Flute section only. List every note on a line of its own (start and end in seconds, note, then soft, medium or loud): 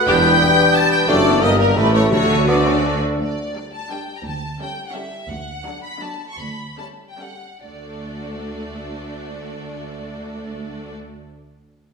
0.08 0.75 G6 loud
0.75 0.92 A6 loud
0.92 0.98 G6 loud
1.09 1.42 D6 loud
1.43 1.60 D#6 loud
1.59 1.65 A#5 loud
1.77 1.94 B5 loud
1.94 2.11 C#6 loud
2.12 2.47 C#6 loud
2.48 3.01 D6 medium